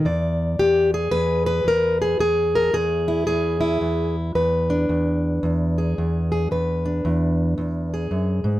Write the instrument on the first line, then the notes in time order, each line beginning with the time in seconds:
steel-string acoustic guitar
0.05 E2 D5
0.59 E2 G4
0.94 G#4
1.11 E2 B4
1.46 B4
1.64 E2 A#4
2.02 G#4
2.19 E2 G#4
2.55 A#4
2.73 E2 G#4
3.08 E4
3.27 E2 G#4
3.61 E4
3.81 E2
4.35 E2 B4
4.70 D4
4.89 E2
5.43 E2
5.78 G#4
5.98 E2
6.32 G#4
6.51 E2 B4
6.85 D4
7.05 E2
7.58 E2
7.94 G#4
8.11 F#2
8.44 G#2